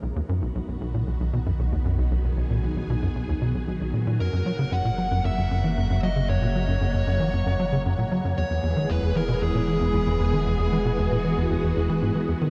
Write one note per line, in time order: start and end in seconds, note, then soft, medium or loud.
0.03 4.18 B1 medium
0.03 0.12 B1 medium
0.03 4.17 D#3 medium
0.03 8.34 F#3 medium
0.03 4.17 B3 medium
0.03 2.10 F#4 medium
0.16 0.21 D#2 medium
0.29 0.41 F#2 loud
0.42 0.51 B1 medium
0.55 0.61 B1 loud
0.68 0.77 B1 medium
0.81 0.94 B1 loud
0.94 1.03 A#2 medium
1.07 1.16 B1 medium
1.20 1.29 B1 medium
1.33 1.39 B2 medium
1.46 1.52 F#2 medium
1.59 1.68 B1 medium
1.72 1.78 D#2 medium
1.85 1.98 F#2 loud
1.98 2.08 B1 loud
2.11 2.17 B1 medium
2.11 4.18 G#4 medium
2.24 2.34 B1 medium
2.37 2.50 B1 medium
2.50 2.60 A#2 medium
2.63 2.73 B1 medium
2.77 2.86 B1 loud
2.90 2.95 B2 loud
3.03 3.08 F#2 medium
3.15 3.25 B1 loud
3.29 3.34 D#2 loud
3.42 3.54 B2 medium
3.55 3.60 B1 medium
3.68 3.73 B1 medium
3.81 3.93 B1 medium
3.94 4.06 A#2 medium
4.07 4.20 A#2 loud
4.20 8.35 F#1 medium
4.20 4.29 F#2 medium
4.20 8.34 C#3 medium
4.20 8.34 A#3 medium
4.20 8.34 F#4 medium
4.20 4.74 A#4 medium
4.33 4.42 F#2 medium
4.46 4.52 F#3 medium
4.59 4.65 C#3 loud
4.72 4.81 F#2 loud
4.72 5.25 F#5 loud
4.85 4.91 A#2 loud
4.98 5.07 F#3 medium
5.11 5.21 F#2 loud
5.25 5.30 F#2 medium
5.25 5.99 E5 medium
5.38 5.47 F#2 medium
5.51 5.63 F#2 loud
5.64 5.73 E3 medium
5.78 5.86 F#2 medium
5.90 5.99 F#2 medium
6.03 6.09 F#3 loud
6.03 6.29 D#5 medium
6.16 6.21 C#3 loud
6.29 6.38 F#2 medium
6.29 7.82 C#5 medium
6.42 6.48 A#2 loud
6.55 6.64 F#3 medium
6.68 6.77 F#2 medium
6.81 6.87 F#2 loud
6.94 7.03 F#2 medium
7.07 7.20 F#2 loud
7.20 7.29 E3 medium
7.33 7.43 F#2 medium
7.46 7.55 F#2 loud
7.60 7.65 F#3 loud
7.72 7.78 C#3 loud
7.86 7.95 F#2 loud
7.99 8.04 A#2 loud
8.12 8.21 F#3 medium
8.25 8.34 F#2 medium
8.38 12.50 E1 medium
8.38 8.43 E2 medium
8.38 12.50 E3 medium
8.38 12.50 G#3 medium
8.38 12.50 B3 medium
8.38 10.45 G#4 medium
8.38 8.92 C#5 loud
8.50 8.60 E2 medium
8.63 8.76 E2 medium
8.76 8.86 D#3 medium
8.90 8.99 E2 medium
8.90 9.16 B4 loud
9.03 9.12 E2 loud
9.16 9.21 E3 loud
9.16 9.42 A#4 medium
9.29 9.34 B2 medium
9.42 9.51 E2 loud
9.42 11.99 G#4 medium
9.55 9.60 A#2 loud
9.68 9.77 E3 medium
9.81 9.90 E2 loud
9.94 9.99 E2 loud
10.07 10.16 E2 medium
10.20 10.32 E2 loud
10.33 10.42 D#3 medium
10.46 10.55 E2 medium
10.46 12.50 F#4 medium
10.59 10.68 E2 loud
10.72 10.78 E3 loud
10.85 10.91 B2 loud
10.99 11.08 E2 loud
11.12 11.17 A#2 loud
11.24 11.34 E3 medium
11.37 11.47 E2 loud
11.50 11.56 E2 medium
11.63 11.73 E2 medium
11.76 11.89 E2 loud
11.89 12.02 E3 loud
12.02 12.12 G#2 medium
12.15 12.28 E3 medium
12.29 12.34 E2 medium
12.42 12.50 D#3 loud